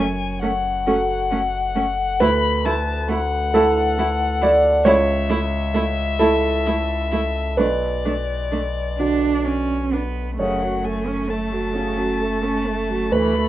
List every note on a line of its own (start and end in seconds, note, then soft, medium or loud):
0.00 2.22 F#1 medium
0.00 2.17 F#2 medium
0.00 2.17 C#5 medium
0.00 0.42 G#5 medium
0.41 0.50 A3 medium
0.41 0.49 C#4 medium
0.41 2.22 F#5 medium
0.87 0.96 A3 medium
0.87 0.95 C#4 medium
0.87 2.17 F#4 soft
0.87 2.17 A4 medium
1.31 1.40 A3 medium
1.31 1.39 C#4 medium
1.75 1.83 A3 medium
1.75 1.84 C#4 medium
2.20 4.87 D2 medium
2.20 4.81 D2 medium
2.20 2.28 A3 medium
2.20 2.29 E4 medium
2.20 3.49 B4 medium
2.20 2.67 B5 medium
2.65 2.73 A3 medium
2.65 2.73 E4 medium
2.65 3.11 A5 medium
3.08 3.16 A3 medium
3.08 3.18 E4 medium
3.08 4.86 F#5 medium
3.54 3.62 A3 medium
3.54 4.81 E4 soft
3.54 3.62 E4 medium
3.54 4.38 A4 medium
3.98 4.06 A3 medium
3.98 4.07 E4 medium
4.42 4.50 A3 medium
4.42 4.50 E4 medium
4.42 4.83 D5 medium
4.85 7.60 C#2 medium
4.85 7.54 C#2 medium
4.85 4.93 A3 medium
4.85 4.94 E4 medium
4.85 6.15 C#5 medium
4.85 7.59 E5 medium
5.29 5.37 A3 medium
5.29 5.37 E4 medium
5.74 5.82 A3 medium
5.74 5.82 E4 medium
6.19 6.29 A3 medium
6.19 6.27 E4 medium
6.19 7.54 E4 medium
6.19 7.54 A4 medium
6.66 6.75 A3 medium
6.66 6.74 E4 medium
7.12 7.20 A3 medium
7.12 7.20 E4 medium
7.57 10.40 B1 medium
7.57 10.35 B1 medium
7.57 7.66 A3 medium
7.57 7.66 D4 medium
7.57 9.88 B4 medium
7.57 9.69 D5 medium
8.05 8.13 A3 soft
8.05 8.13 D4 medium
8.51 8.60 A3 soft
8.51 8.59 D4 soft
8.98 10.35 D3 soft
8.98 9.46 D4 medium
8.98 9.07 D4 soft
8.98 10.35 F#4 soft
9.44 9.94 C#4 medium
9.44 9.53 D4 soft
9.92 10.38 B3 soft
9.92 10.01 D4 soft
10.38 13.13 F#1 medium
10.38 13.08 F#2 soft
10.38 10.63 C#3 soft
10.38 13.49 A3 medium
10.38 13.08 C#5 medium
10.38 10.86 F#5 medium
10.62 10.86 F#3 soft
10.85 11.09 A3 soft
10.85 11.31 G#5 soft
11.07 11.31 C#4 soft
11.29 11.53 A3 soft
11.29 13.14 A5 medium
11.52 11.76 F#3 soft
11.74 11.99 C#3 soft
11.74 13.08 C#4 soft
11.74 13.08 F#4 soft
11.97 12.22 F#3 soft
12.20 12.45 A3 soft
12.44 12.68 C#4 soft
12.67 12.91 A3 soft
12.89 13.11 F#3 soft
13.12 13.49 D2 medium
13.12 13.49 D2 soft
13.12 13.37 E3 medium
13.12 13.49 B4 medium
13.12 13.49 B5 medium
13.35 13.49 A3 soft